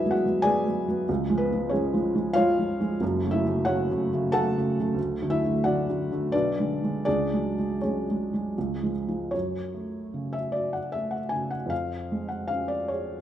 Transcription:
Already playing: D2 F#3 G#3 B3 E4 G#4 B4 D5 E5 G#5
0.05 F#3 G#3 B3
0.11 F#4 F#5
0.25 F#3 G#3 B3
0.42 F#3 G#3 B3 G#4 D5 G#5
0.66 F#3 G#3 B3
0.88 F#3 G#3 B3
1.09 C#2
1.30 F3 G#3
1.38 B3 B4
1.52 F3 G#3
1.69 F3 G#3 C#4 G#4 C#5
1.94 F3 G#3
2.15 F3 G#3
2.33 F4 C#5 F5
2.37 F3 G#3
2.59 F3 G#3
2.80 F3 G#3
3.01 F#1 F#2
3.24 C#3 F#3 A3
3.31 E4 E5
3.45 C#3 F#3 A3
3.65 C#3 F#3 A3 F#4 C#5 F#5
3.91 C#3 F#3 A3
4.13 C#3 F#3 A3
4.32 C#3 F#3 A3 A4 F#5 A5
4.57 C#3 F#3 A3
4.80 C#3 F#3 A3
4.94 D2
5.22 D3 F#3 A3
5.30 E4 E5
5.44 D3 F#3 A3
5.64 D3 F#3 A3 F#4 D5 F#5
5.89 D3 F#3 A3
6.12 D3 F#3 A3
6.32 B1 D4 B4 D5
6.59 D3 G#3
6.84 D3 G#3
7.05 C#2 D4 G#4 D5
7.33 F#3 G#3
7.59 F#3 G#3
7.81 F#3 G#3 C#4 G#4 C#5
8.10 F#3 G#3
8.34 F#3 G#3
8.58 C#2
8.83 F3 G#3
9.08 F3 G#3
9.31 F#2 C#5
9.74 A3
10.14 C#3
10.33 E5
10.52 F#4 D5
10.73 F#5
10.92 A3 E5
11.11 F#5
11.29 C#3 G#5
11.51 F#5
11.66 F2 F5
12.12 G#3
12.29 F#5
12.48 C#4 F5
12.68 D5
12.88 G#4 C#5

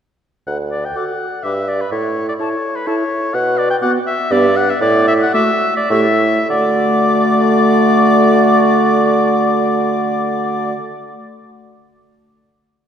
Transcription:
0.47 D2 F#5
0.71 D5
0.85 G5
0.96 F#4 A4 F#5 D6
1.43 G2 G4 B4 E5 D6
1.68 D5
1.81 B4
1.92 A2 C#5
2.29 D5
2.39 E4 A4 C#5 A5
2.76 B4
2.87 E4 A4 C#5 A5
3.34 B2 F#5
3.58 D5
3.70 G5
3.82 B3 F#4 F#5 D6
4.07 E5
4.31 G2 B3 G4 D5 D6
4.56 F#5
4.70 E5
4.81 A2 D5
5.08 E5
5.22 F#5
5.33 A3 F#4 E5 D6
5.76 D5
5.90 A2 A3 G4 E5 C#6
6.50 D3 A3 F#4 D5 D6

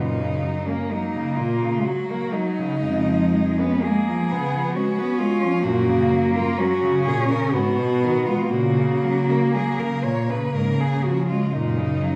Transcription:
Already playing: F#2 A#2 D#4
0.20 C#3
0.44 F#3
0.67 A#3 C#4
0.90 F#3 A#3 D#4
1.16 C#3
1.37 A#2 F4
1.63 C#3
1.84 F#3 F#4
2.10 A#3
2.33 F#3 D#4
2.58 C#3
2.82 F2 C#3 G#3
3.08 F3
3.34 G#3
3.59 B3 C#4
3.83 G#3 A#3 G#4
4.09 F3
4.31 C#3 B3
4.54 F3
4.75 G#3 C#4 F#4
4.98 B3
5.19 G#3 F4
5.43 F3
5.63 F#2 A#2 A#3 F#4
5.88 C#3
6.12 F#3
6.34 A#3 F4
6.58 F#3 C#4 F#4
6.83 C#3
7.06 A#2 G#4
7.29 C#3 A#4
7.52 G#2 B2 B3 F#4
7.78 B2
8.04 D#3
8.27 G#3 F4
8.51 A#2 C#3 A#3 F#4
8.78 C#3
9.03 F#3
9.30 A#3
9.54 F#3 G#4
9.79 C#3 A#4
10.04 A#2 C#5
10.29 C#3 B4
10.54 G#2 C#3 A#4
10.79 C#3 G#4
11.04 F3 F#4
11.29 G#3 F4
11.53 F#2 A#2 D#4
11.78 C#3
12.02 F#3

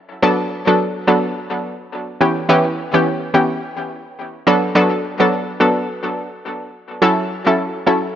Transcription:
0.22 F#3 B3 D4 A4
0.67 F#3 B3 D4 A4
1.07 F#3 B3 D4 A4
2.21 E3 B3 C#4 G4
2.49 E3 B3 C#4 G4
2.94 E3 B3 C#4 G4
3.34 E3 B3 C#4 G4
4.47 F#3 B3 D4 A4
4.75 F#3 B3 D4 A4
5.20 F#3 B3 D4 A4
5.60 F#3 B3 D4 A4
7.02 F#3 C#4 E4 A4
7.46 F#3 C#4 E4 A4
7.86 F#3 C#4 E4 A4

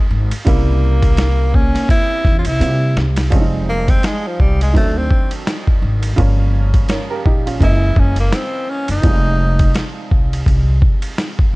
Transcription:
Already playing: D#3 G#3 A#3 C4 G4
0.11 G#1
0.31 ride
0.45 C2 C3 C#3 G3 A#3 E4, kick, ride
1.02 kick, ride
1.17 snare, hi-hat pedal, ride
1.53 A#3 C#4, kick
1.75 snare, ride
1.89 C4 E4, kick, ride
2.24 E2, kick, snare
2.38 C#4 F4
2.45 C2 C4 E4, ride
2.59 C3 G3 A#3 C4 F4, hi-hat pedal, ride
2.68 G4
2.96 C2, snare
3.16 snare, ride
3.30 F1 F3 G3 G#3 C4 C#4, kick, ride
3.41 D#4
3.69 A#3
3.88 C4, kick, ride
4.03 G#3, snare, hi-hat pedal, ride
4.27 F3
4.40 C2 G3, kick
4.61 G#3, ride
4.73 D2 D#3 F#3 A3 C4 C#4, kick, ride
4.83 D4
4.98 C4
5.11 kick
5.31 ride
5.47 snare, hi-hat pedal, ride
5.67 kick
5.82 G#1
6.03 ride
6.16 G1 C#3 F3 G3 A#3 C#4, kick, ride
6.74 kick, ride
6.89 A#4 C#5, snare, hi-hat pedal, ride
7.10 G4 A#4
7.25 A#1 D#4 G4, kick
7.46 C#4 F4, ride
7.59 F#1 C#3 E3 G#3 A#3 D#5, kick, ride
7.63 E4
7.96 F#1 C#4, kick
8.16 A#3, ride
8.32 C4, snare, hi-hat pedal, ride
8.70 C#4
8.88 F#1 D#4, ride
9.02 F1 C3 F3 G3 G#3 D#4, kick, ride
9.59 kick, ride
9.74 snare, hi-hat pedal, ride
10.11 C2, kick
10.33 ride
10.46 C2, kick, ride
10.82 kick
11.02 ride
11.18 snare, hi-hat pedal, ride
11.39 kick

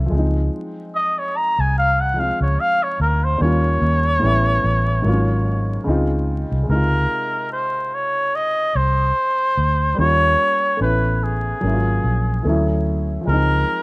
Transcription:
Already playing: F#3 A3 C#4 E4
0.06 F3
0.10 C#2 G#3
0.14 C4
0.18 D#4
0.95 D#5
1.19 C#5
1.37 A#5
1.59 C2 G#5
1.78 F5
2.01 F#5
2.14 F3 G#3
2.18 C4 F4 F5
2.41 C#2 C#5
2.60 F5
2.83 C#5
3.00 D2 A#4
3.24 C5
3.38 D#2 G3 A#3 C#5
3.42 C#4 F4
3.82 D#2
4.20 A1 A2 G3 B3
4.24 C#4 E4
4.64 A1
5.02 G#1 G#2 F#3 A#3
5.06 C4 F4
5.13 C#4
5.84 C#2 C#3 G#3 C4
5.89 D#4 F4
6.52 C2
6.63 G#3
6.67 C#2 C3 A#4
6.72 D#4
6.76 F4
7.53 C5
7.94 C#5
8.35 D#5
8.75 C2 C5
9.57 D2
9.95 D#2 G3 A#3
9.99 C#4 F4 C#5
10.77 A1 A3 B3
10.81 C#4 E4 B4
11.23 G#4
11.61 G#1 F#3 A#3
11.65 C#4 E4
11.73 F4
12.04 A#1
12.43 D2 E3 A3
12.47 F#3 C#4 E4
13.21 F3 G#3
13.27 C#2 C4 A#4
13.33 D#4

